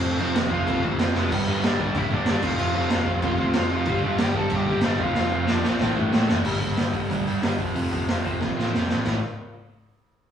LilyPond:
<<
  \new Staff \with { instrumentName = "Lead electric guitar" } { \time 4/4 \key f \lydian \tempo 4 = 186 <c' c''>8 <c' c''>4 <f' f''>4 r4 <b b'>8~ | <b b'>4 <d' d''>8 <d' d''>8 <e' e''>8 <d' d''>8 <d' d''>8 <f' f''>8~ | <f' f''>8 <f' f''>2. <f' f''>8~ | <f' f''>4 <g' g''>8 <a' a''>8 <g' g''>4 <d' d''>8 <f' f''>8~ |
<f' f''>8 <f' f''>8 <d' d''>8 <c' c''>4 r4. | r1 | r1 | r1 | }
  \new Staff \with { instrumentName = "Overdriven electric guitar" } { \clef bass \time 4/4 \key f \lydian <f, c f>8 <f, c f>8 <f, c f>8 <f, c f>8 <f, c f>8 <f, c f>8 <f, c f>8 <f, c f>8 | <g, d g>8 <g, d g>8 <g, d g>8 <g, d g>8 <g, d g>8 <g, d g>8 <g, d g>8 <f, c f>8 | <f, c f>8 <f, c f>8 <f, c f>8 <f, c f>8 <f, c f>8 <f, c f>8 <f, c f>8 <f, c f>8 | <g, d g>8 <g, d g>8 <g, d g>8 <g, d g>8 <g, d g>8 <g, d g>8 <g, d g>8 <f, c f>8 |
<f, c f>8 <f, c f>8 <f, c f>8 <f, c f>8 <a, e a>8 <a, e a>8 <a, e a>8 <a, e a>8 | <g, d g>8 <g, d g>8 <g, d g>8 <g, d g>8 <g, d g>8 <g, d g>8 <g, d g>8 <f, c f>8 | <f, c f>8 <f, c f>8 <f, c f>8 <f, c f>8 <f, c f>8 <f, c f>8 <f, c f>8 <f, c f>8 | <a, e a>8 r2. r8 | }
  \new Staff \with { instrumentName = "Overdriven electric guitar" } { \clef bass \time 4/4 \key f \lydian <f, c f>8 <f, c f>8 <f, c f>8 <f, c f>8 <f, c f>8 <f, c f>8 <f, c f>8 <f, c f>8 | <g, d g>8 <g, d g>8 <g, d g>8 <g, d g>8 <g, d g>8 <g, d g>8 <g, d g>8 <f, c f>8 | <f, c f>8 <f, c f>8 <f, c f>8 <f, c f>8 <f, c f>8 <f, c f>8 <f, c f>8 <f, c f>8 | <g, d g>8 <g, d g>8 <g, d g>8 <g, d g>8 <g, d g>8 <g, d g>8 <g, d g>8 <f, c f>8 |
<f, c f>8 <f, c f>8 <f, c f>8 <f, c f>8 <a, e a>8 <a, e a>8 <a, e a>8 <a, e a>8 | r1 | r1 | r1 | }
  \new Staff \with { instrumentName = "Picked electric bass" } { \clef bass \time 4/4 \key f \lydian f,,8 f,,8 f,,8 f,,8 f,,8 d,8 f,8 f,,8 | g,,8 g,,8 g,,4 g,,8 g,,8 g,,8 f,,8 | f,,8 f,,8 f,,8 f,,8 f,,8 d,8 f,8 f,,8 | g,,8 g,,8 g,,4 g,,8 g,,8 g,,8 f,,8 |
f,,8 f,,8 f,,8 b,,8 a,,8 g,8 a,8 fis,,8 | g,,8 g,,8 g,,4 d,8 g,,8 g,,8 f,,8 | f,,4 f,,4 c,8 a,,8 f,,8 a,,8 | a,,8 r2. r8 | }
  \new DrumStaff \with { instrumentName = "Drums" } \drummode { \time 4/4 cymc4 <cymc sn>8 bd8 <cymc bd>8 bd8 <cymc sn>8 sn8 | <cymc bd>4 <cymc sn>8 bd8 <cymc bd>8 bd8 <cymc sn>8 <cymc bd>8 | cymc4 <cymc sn>8 bd8 <cymc bd>8 bd8 <cymc sn>4 | <cymc bd>4 <cymc sn>8 bd8 <cymc bd>8 bd8 <cymc sn>8 bd8 |
sn4 sn8 sn8 <bd sn>4 sn8 sn8 | <cymc bd>8 <hho bd>8 <hho sn>8 <hho bd>8 <hho bd>8 hho8 <hho sn>8 <hho bd>8 | hho8 <hho bd>8 <hho sn>8 <hho bd>8 <bd sn>8 sn8 sn8 sn8 | <cymc bd sn>4 r4 r4 r4 | }
>>